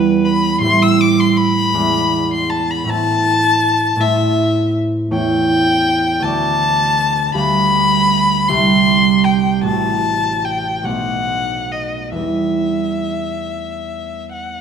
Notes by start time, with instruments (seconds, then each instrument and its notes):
Already playing: harp E2 G3 E4 B4, violin B4
0.25 violin B5
0.59 harp A2 G3, violin C6
0.64 harp E4 C5
0.82 violin E6
1.01 violin D6
1.20 violin C6
1.37 violin B5
1.73 harp E2 G#3 E4 D5
2.34 violin C6
2.50 violin A5
2.71 violin B5
2.84 harp A2 A3 E4
2.88 harp C5, violin A5
3.96 harp A2 A3 E4
4.00 harp C5, violin E5
5.11 harp E2 A3 E4 C#5, violin G5
6.20 harp D2 A3 F#4, violin A5
6.25 harp D5
7.34 harp D2 G3 G4 F5, violin B5
8.48 harp C2 G3 G4 E5, violin C6
9.24 violin G5
9.62 harp A1 A3 F#4, violin A5
9.67 harp C5
10.45 violin G5
10.83 harp B1 A3 D#4, violin F#5
10.89 harp C5
11.72 violin D#5
12.12 harp E2 G3 B4, violin E5
12.18 harp E4
14.33 violin F#5